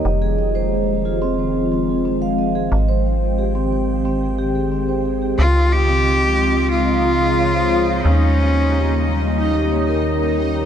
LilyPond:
<<
  \new Staff \with { instrumentName = "Synth texture" } { \time 4/4 \key des \lydian \tempo 4 = 90 r1 | r1 | <ees' ees''>1~ | <ees' ees''>1 | }
  \new Staff \with { instrumentName = "Vibraphone" } { \time 4/4 \key des \lydian ees''16 aes'16 ees''16 c''16 r8 f'16 c'16 r8 c'16 r16 c'16 f''16 ees''16 aes'16 | ees''16 c''16 r8 g'16 c'16 r8 c'16 r16 g'16 aes'16 c'16 c''16 aes'16 g'16 | r8 f'16 c'16 r8 c'16 r16 c'16 f''16 f'16 aes'16 des''16 c''16 r8 | ees'16 bes16 r8 bes16 r16 bes16 ees''16 ees'16 g'16 des''16 bes'16 r8 ees'16 bes16 | }
  \new Staff \with { instrumentName = "Cello" } { \time 4/4 \key des \lydian r1 | r1 | f'8 g'4. f'2 | des'2 r2 | }
  \new Staff \with { instrumentName = "Ambient pad" } { \clef bass \time 4/4 \key des \lydian << { <ees f f'>1 | <ees g''>1 | <des f f'>1 | <ees g g'>1 | } \\ { <aes c'>1~ | <aes c'>1 | <aes c'>1 | <bes des'>1 | } >> }
  \new Staff \with { instrumentName = "FM bass" } { \clef bass \time 4/4 \key des \lydian f,,1 | aes,,1 | des,1 | ees,1 | }
>>